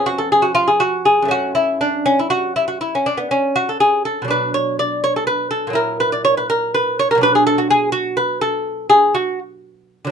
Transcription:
lute
Already playing: F2 B3 C#4
0.06 F#4
0.18 A4
0.32 G#4
0.42 F#4
0.55 F4
0.68 G#4
0.80 F#4
1.05 G#4
1.22 F#2 A3
1.28 C#4 F#4
1.55 E4
1.81 D4
2.06 C#4
2.19 E4
2.30 F#4
2.56 E4
2.68 F#4
2.81 E4
2.95 C#4
3.06 D4
3.17 B3
3.31 C#4
3.56 F#4
3.69 A4
3.80 G#4
4.05 A4
4.22 B2 F#3
4.28 D4 B4
4.54 C#5
4.79 D5
5.04 C#5
5.16 A4
5.27 B4
5.51 A4
5.67 A#2 F#3
5.73 E4 A#4
6.00 B4
6.12 D5
6.25 C#5
6.37 B4
6.50 A#4
6.74 B4
6.99 C#5
7.11 A#4
7.15 B2 F#3
7.21 D4 B4
7.35 G#4
7.47 A4
7.58 F#4
7.70 G#4
7.92 F#4
8.17 B4
8.41 A4
8.89 G#4
9.15 F#4
10.05 D3 F#3

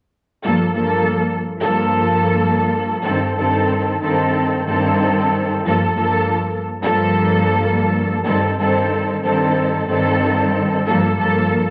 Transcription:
string section
0.44 G2 F3 A#3 A4
0.74 G2 F3 A#3 A4
1.61 G2 F3 A#3 A4
3.02 G2 D#3 C4 A4
3.36 G2 D#3 C4 A4
4.01 G2 D#3 C4 A4
4.67 G2 D#3 C4 A4
5.66 G2 F3 A#3 A4
5.96 G2 F3 A#3 A4
6.82 G2 F3 A#3 A4
8.24 G2 D#3 C4 A4
8.58 G2 D#3 C4 A4
9.23 G2 D#3 C4 A4
9.88 G2 D#3 C4 A4
10.87 G2 F3 A#3 A4
11.17 G2 F3 A#3 A4

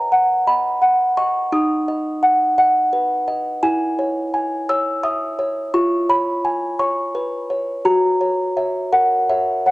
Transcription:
music box
Already playing: B4 D#5 A#5
0.12 F#5
0.47 D#5 B5
0.82 F#5
1.17 D#5 C#6
1.52 D#4 D#6
1.88 D#5
2.23 F#5
2.58 D#5 F#5
2.93 B4
3.28 D#5
3.63 E4 G#5
3.99 C#5
4.34 G#5
4.69 C#5 E6
5.03 E5 D#6
5.39 C#5
5.74 F4 C#6
6.09 C#5 B5
6.45 G#5
6.79 C#5 C#6
7.15 B4
7.50 C#5
7.85 F#4 A#5
8.21 C#5
8.57 C#5 E5
8.92 A#4 F#5
9.29 C#5 E5
9.66 C#5 F#5

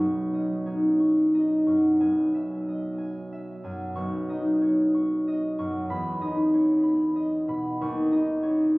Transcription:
harp
Already playing: B1 C#4 D#4
0.00 C#6
0.33 C#4 D#5
0.66 D#4 C#5
1.00 C#6
1.34 D#4 D#5
1.66 F#2 C#6
2.00 B1 G#5
2.34 E5
2.69 D#5
2.98 G#5
3.32 E5
3.64 F#2 G#5
3.95 B1 C#6
4.29 D#4 D#5
4.62 C#5
4.94 C#6
5.28 D#5
5.58 F#2 C#6
5.89 E2 B5
6.21 D#4 D#5
6.54 C#5
6.83 B5
7.16 D#5
7.48 B2 B5
7.81 D#2 C#6
8.12 D#4 D#5
8.43 C#5

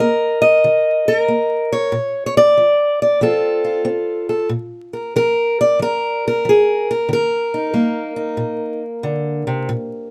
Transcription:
steel-string acoustic guitar
Already playing: D#5
0.00 A#3 A#4
0.42 D#5
0.64 D#3
1.08 A#4
1.28 A#3
1.72 C#5
1.92 A#2
2.26 C#5
2.37 D5
2.57 F3
3.02 D5
3.21 F3 C4 F4 A4
3.64 F4
3.85 C4
4.29 A4
4.49 A#2
4.93 A#4
5.16 F3 A#4
5.61 D5
5.79 F3 A#4
6.28 A#4
6.45 F3
6.49 G#4
6.91 A#4
7.09 D#3
7.13 A#4
7.54 D#4
7.74 G3 A#3
8.16 D#4
8.37 A#2
9.03 D3
9.47 C3
9.69 A#2

